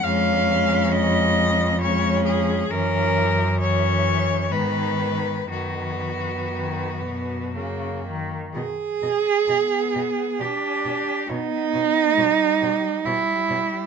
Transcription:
<<
  \new Staff \with { instrumentName = "Cello" } { \time 3/4 \key cis \dorian \tempo 4 = 67 eis''4 dis''4 cis''8 gis'8 | ais'4 cis''4 b'4 | fis'2~ fis'8 r8 | dis''8 dis''8 dis''8 dis''8 d''8 d''8 |
cis''8 cis''8 cis''8 cis''8 cis''8 cis''8 | }
  \new Staff \with { instrumentName = "Cello" } { \time 3/4 \key cis \dorian cis'2 cis'4 | cis'4 cis'4 b4 | b2 ais4 | gis'2 g'4 |
dis'2 e'4 | }
  \new Staff \with { instrumentName = "Cello" } { \clef bass \time 3/4 \key cis \dorian gis2 gis4 | e4 e4 dis4 | dis4 dis8 b,8 cis8 dis8 | r4 b4 d'4 |
b4 g4 g4 | }
  \new Staff \with { instrumentName = "Cello" } { \clef bass \time 3/4 \key cis \dorian eis,2. | fis,2 gis,4 | fis,2. | b,8 b,8 b,8 b,8 b,8 b,8 |
b,8 b,8 b,8 b,8 b,8 b,8 | }
>>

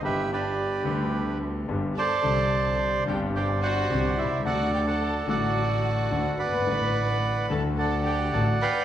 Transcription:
<<
  \new Staff \with { instrumentName = "Bandoneon" } { \time 4/4 \key d \mixolydian \tempo 4 = 108 << { e''8 d''4 r2 a''8~ | a''4 r8 g''8 g''8 fis''4 e''8 | fis''8 g''16 a''8. fis''2 b''8~ | b''4. a''8 a''8 g''8 a''8 b''8 | } \\ { <g' b'>8 <g' b'>2 r4 <c'' d''>8~ | <c'' d''>4. r8 <c'' d''>8 <c'' d''>4. | <a' d''>8. <d'' fis''>8. <a' d''>2 <d'' fis''>8~ | <d'' fis''>4. r8 <d'' fis''>4. <f'' g''>8 | } >> }
  \new Staff \with { instrumentName = "Violin section" } { \time 4/4 \key d \mixolydian e'8 d'4 r2 a'8~ | a'4 r8 g'8 g'8 fis'4 e'8 | fis'8 g'16 a'8. fis'2 b'8~ | b'4. a'8 a'8 g'8 a'8 b'8 | }
  \new Staff \with { instrumentName = "Grand piano" } { \clef bass \time 4/4 \key d \mixolydian <g,, g, d g b g'>4. <d, d g b g'>4. <g,, g, d g b g'>8 r8 | <c, c d g c' g'>4. <g,, g, d g c' g'>4. <c, c d g c' g'>8 r32 b,,32 c,32 cis,32 | <d, d fis a fis'>4. <a,, a, d fis a fis'>4. <d, d fis a fis'>8 r32 fis,,32 g,,32 aes,,32 | <a,, a, d fis a fis'>4. <d, d fis a fis'>4. <a,, a, d fis a fis'>8 r8 | }
  \new Staff \with { instrumentName = "Double bass" } { \clef bass \time 4/4 \key d \mixolydian g,,4. d,4. g,,8 r8 | c,4. g,,4. c,8 c,8 | d,4. a,,4. d,8 g,,8 | a,,4. d,4. a,,8 r8 | }
>>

